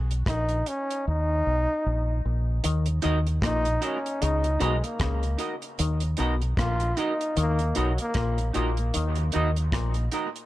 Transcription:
Already playing: fingered electric bass B1
0.11 closed hi-hat
0.26 fingered electric bass A#1, trombone D#4, kick, cross-stick, closed hi-hat
0.49 closed hi-hat
0.66 trombone C#4, closed hi-hat
0.91 closed hi-hat
1.07 fingered electric bass D#2, trombone D#4
1.47 fingered electric bass B1
1.86 fingered electric bass A#1
2.25 fingered electric bass A#1
2.64 fingered electric bass D#2, clav D#3, closed hi-hat
2.86 closed hi-hat
3.02 fingered electric bass D#2, clav D#3, clean electric guitar D#4 F#4 A#4 D#5, closed hi-hat
3.27 closed hi-hat
3.42 fingered electric bass A#1, clav A#2, trombone D#4, kick, cross-stick, closed hi-hat
3.65 closed hi-hat
3.81 trombone C#4, clean electric guitar D#4 F#4 A#4 D#5, closed hi-hat
4.06 closed hi-hat
4.22 fingered electric bass C#2, clav C#3, trombone D#4, closed hi-hat
4.44 closed hi-hat
4.60 fingered electric bass B1, clav B2, trombone G#3, clean electric guitar D#4 F#4 A#4 D#5, closed hi-hat
4.82 trombone A#3, muted clean electric guitar stroke, closed hi-hat
5.00 fingered electric bass C#2, clav C#3, kick, cross-stick, closed hi-hat
5.23 closed hi-hat
5.38 clean electric guitar D#4 F#4 A#4 D#5, closed hi-hat
5.62 closed hi-hat
5.79 fingered electric bass D#2, clav D#3, closed hi-hat
6.00 closed hi-hat
6.17 fingered electric bass B1, clav B2, clean electric guitar D#4 F#4 A#4 D#5, closed hi-hat
6.41 closed hi-hat
6.57 fingered electric bass A#1, clav A#2, trombone F4, kick, cross-stick, closed hi-hat
6.80 closed hi-hat
6.97 clean electric guitar D#4 F#4 A#4 D#5, trombone D#4, closed hi-hat
7.21 closed hi-hat
7.36 fingered electric bass D#2, clav D#3, trombone A#3, closed hi-hat
7.59 closed hi-hat
7.75 fingered electric bass B1, clav B2, trombone F#3, clean electric guitar D#4 F#4 A#4 D#5, closed hi-hat
7.98 trombone A#3, muted clean electric guitar stroke, closed hi-hat
8.14 fingered electric bass A#1, clav A#2, kick, cross-stick, closed hi-hat
8.38 closed hi-hat
8.53 fingered electric bass A#1, clav A#2, clean electric guitar D#4 F#4 A#4 D#5, closed hi-hat
8.77 closed hi-hat
8.94 fingered electric bass D#2, clav D#3, closed hi-hat
9.15 closed hi-hat
9.32 fingered electric bass D#2, clav D#3, clean electric guitar D#4 F#4 A#4 D#5, closed hi-hat
9.56 closed hi-hat
9.72 fingered electric bass A#1, clav A#2, kick, cross-stick, closed hi-hat
9.94 closed hi-hat
10.11 clean electric guitar D#4 F#4 A#4 D#5, closed hi-hat
10.36 closed hi-hat

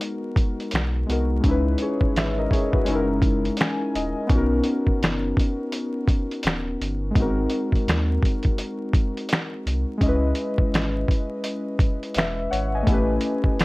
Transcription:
Already playing: synth keys G#3 B3 D#4 F#4 A#4
0.01 closed hi-hat
0.36 kick, closed hi-hat
0.60 closed hi-hat
0.71 sub bass B1, snare, closed hi-hat
0.76 finger snap
1.07 sub bass C2, synth keys G#3 B3 D#4 F#4, closed hi-hat
1.12 synth keys A#4
1.40 synth keys G#3 C#4, kick, closed hi-hat
1.44 sub bass C#2, synth keys D#4
1.48 synth keys E4 B4
1.78 synth keys C#5, closed hi-hat
1.82 synth keys G#4
2.01 kick
2.16 sub bass G#1, synth keys B4 E5, finger snap, snare, closed hi-hat
2.38 synth keys A#4 D#5
2.51 synth keys G#4 C#5, kick, closed hi-hat
2.72 synth keys F#4 B4, kick
2.85 sub bass F#1, synth keys G#3 C#4, closed hi-hat
2.90 synth keys D#4 E4
2.95 synth keys A#4
3.22 kick, closed hi-hat
3.45 closed hi-hat
3.57 synth keys G#5, snare, closed hi-hat
3.62 finger snap
3.95 sub bass D#1, synth keys D#5, closed hi-hat
4.27 sub bass B1, synth keys B3 C#4, kick, closed hi-hat
4.32 synth keys D#4 F#4
4.37 synth keys A#4
4.64 closed hi-hat
4.87 kick
5.01 sub bass F#1, finger snap, snare, closed hi-hat
5.37 kick, closed hi-hat
5.72 closed hi-hat
6.08 kick, closed hi-hat
6.31 closed hi-hat
6.43 sub bass D#1, snare, closed hi-hat
6.48 finger snap
6.80 sub bass G1, closed hi-hat
7.11 synth keys G#3 B3
7.15 sub bass G#1, synth keys D#4 F#4, kick, closed hi-hat
7.20 synth keys C4 A#4
7.50 closed hi-hat
7.72 kick, closed hi-hat
7.87 sub bass D#2, finger snap, snare, closed hi-hat
8.23 kick, closed hi-hat
8.43 kick, closed hi-hat
8.58 closed hi-hat
8.93 kick, closed hi-hat
9.17 closed hi-hat
9.29 snare, closed hi-hat
9.34 finger snap
9.66 sub bass C2, closed hi-hat
9.98 sub bass C#2, synth keys G#3 C#4, kick, closed hi-hat
10.03 synth keys E4 D#5
10.08 synth keys B4
10.35 closed hi-hat
10.58 kick
10.73 sub bass G#1, finger snap, snare, closed hi-hat
11.08 kick, closed hi-hat
11.44 closed hi-hat
11.79 kick, closed hi-hat
12.03 closed hi-hat
12.14 sub bass E1, synth keys B4 E5, snare, closed hi-hat
12.19 finger snap
12.51 sub bass G#1, synth keys C#5 F#5, closed hi-hat
12.75 synth keys D#5 G#5
12.83 synth keys A3 B3
12.87 sub bass A1, synth keys E4 G4, kick, closed hi-hat
12.92 synth keys C#4 B4
13.21 closed hi-hat
13.44 kick
13.59 sub bass E1, finger snap, snare, closed hi-hat

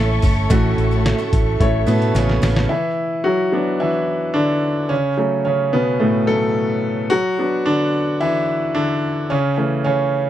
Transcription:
Already playing: fingered electric bass A1, grand piano A2 A3 E4 A4 C#5, steel-string acoustic guitar A3 C#4 E4 A4, string section A4 C#5 E5 C#6
0.22 fingered electric bass G1, steel-string acoustic guitar A3 C#4 E4 A4, kick, open hi-hat
0.50 fingered electric bass A1, steel-string acoustic guitar A2 E3 A3 C#4 E4 A4, grand piano A2 A3 E4 F#4, kick, closed hi-hat
0.78 fingered electric bass A1, closed hi-hat
0.91 steel-string acoustic guitar A3 C#4 E4 A4
1.06 snare, closed hi-hat
1.19 steel-string acoustic guitar A3 C#4 E4 A4
1.33 fingered electric bass A1, kick, closed hi-hat
1.60 fingered electric bass A1, grand piano A3 E4 C#5, kick, closed hi-hat
1.87 fingered electric bass A2, grand piano B2 B3, steel-string acoustic guitar A3 C#4 E4 A4, closed hi-hat
2.02 closed hi-hat
2.14 fingered electric bass A1, grand piano C#3 C#4, steel-string acoustic guitar A3 C#4 E4 A4, snare, closed hi-hat
2.29 snare
2.42 fingered electric bass A1, steel-string acoustic guitar A3 C#4 E4 A4, snare, open hi-hat
2.56 snare
2.69 grand piano E3 E4
3.24 grand piano F#3 F#4
3.52 grand piano F#3 B3 D4
3.80 grand piano E3 E4
4.34 grand piano D3 D4
4.89 grand piano C#3 C#4
5.18 grand piano F#3 A3 C#4
5.45 grand piano C#3 C#4
5.73 grand piano B2 B3
6.00 grand piano A2 A3
6.27 grand piano F#3 A3 C#4 A4
7.10 grand piano F#3 F#4
7.39 grand piano F#3 B3 D4
7.66 grand piano D3 D4
8.21 grand piano E3 E4
8.75 grand piano D3 D4
9.30 grand piano C#3 C#4
9.57 grand piano E3 A3 C#4
9.84 grand piano C#3 C#4

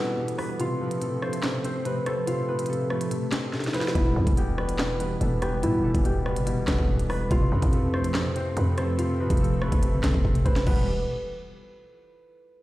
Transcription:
Already playing: grand piano B2 E3 G3 B3 B4, analog synth pad E3 G3 B3 G4, harp E4 G4 A4 B4
0.17 grand piano B2
0.28 closed hi-hat
0.38 grand piano B4, harp B4, cross-stick, open hi-hat
0.59 grand piano C3, analog synth pad F3 A3 C4 A4, harp F4, closed hi-hat
0.81 grand piano F3, harp B4
0.91 closed hi-hat
1.01 grand piano C3, harp A4, closed hi-hat
1.22 grand piano A3, harp C5, cross-stick
1.33 closed hi-hat
1.43 grand piano C3, snare, clap
1.64 grand piano C4, harp C5, closed hi-hat
1.85 grand piano C3, harp B4, closed hi-hat
2.06 harp A4, grand piano C5, cross-stick, closed hi-hat
2.27 grand piano C3, harp F4, closed hi-hat
2.48 grand piano F3, harp B4
2.59 closed hi-hat
2.66 grand piano C3, harp A4, closed hi-hat
2.73 closed hi-hat
2.90 grand piano A3, harp B4, cross-stick
3.01 closed hi-hat
3.11 grand piano C3, closed hi-hat
3.32 grand piano C4, harp A4, snare, clap, closed hi-hat
3.53 grand piano C3, snare
3.60 snare, closed hi-hat
3.67 snare
3.74 harp B4, grand piano C5, snare, closed hi-hat, open hi-hat
3.81 snare
3.88 snare
3.95 808-style bass E1, grand piano B2, analog synth pad E3 G3 B3 G4, harp E4, kick, closed hi-hat
4.16 808-style bass E2, grand piano E3, harp A4
4.27 808-style bass E1, kick, closed hi-hat
4.37 grand piano B2, harp G4, closed hi-hat
4.58 grand piano G3, harp B4, cross-stick
4.69 closed hi-hat
4.78 grand piano B2, snare, clap
4.99 grand piano B3, harp B4, closed hi-hat
5.21 808-style bass E1, grand piano B2, harp A4, closed hi-hat
5.42 harp G4, grand piano B4, cross-stick, closed hi-hat
5.63 808-style bass B2, grand piano B2, harp E4, closed hi-hat
5.79 808-style bass E1
5.84 grand piano E3, harp A4
5.95 808-style bass E1, kick, closed hi-hat
6.05 grand piano B2, harp G4, closed hi-hat
6.26 grand piano G3, harp B4, cross-stick
6.36 808-style bass G1, closed hi-hat
6.46 grand piano B2, closed hi-hat
6.52 808-style bass E1
6.67 808-style bass E1, grand piano B3, harp A4, kick, snare, clap, closed hi-hat
6.78 808-style bass E1, kick
6.88 grand piano B2
6.99 closed hi-hat
7.09 harp B4, grand piano B4, cross-stick, open hi-hat
7.31 808-style bass F1, grand piano C3, analog synth pad F3 A3 C4 A4, harp F4, kick, closed hi-hat
7.52 808-style bass F2, grand piano F3, harp B4
7.62 808-style bass F2, kick, closed hi-hat
7.72 grand piano C3, harp A4, closed hi-hat
7.94 grand piano A3, harp C5, cross-stick
8.04 closed hi-hat
8.14 grand piano C3, snare, clap
8.36 grand piano C4, harp C5, closed hi-hat
8.56 808-style bass F2, grand piano C3, harp B4, closed hi-hat
8.78 harp A4, grand piano C5, cross-stick, closed hi-hat
8.98 grand piano C3, harp F4, closed hi-hat
9.20 grand piano F3, harp B4
9.30 808-style bass F1, kick, closed hi-hat
9.37 grand piano C3, harp A4, closed hi-hat
9.44 closed hi-hat
9.61 grand piano A3, harp B4, cross-stick
9.72 808-style bass F1, kick, closed hi-hat
9.83 grand piano C3, closed hi-hat
9.93 808-style bass G1
10.03 808-style bass F1, grand piano C4, harp A4, kick, snare, clap, closed hi-hat
10.14 808-style bass F1, kick
10.25 808-style bass F1, grand piano C3, kick
10.35 closed hi-hat
10.45 808-style bass F1, harp B4, grand piano C5, kick, closed hi-hat, open hi-hat
10.56 snare
10.67 808-style bass E1, grand piano B2 E3 G3 B3, analog synth pad E3 G3 B3 G4, harp B4, kick, crash

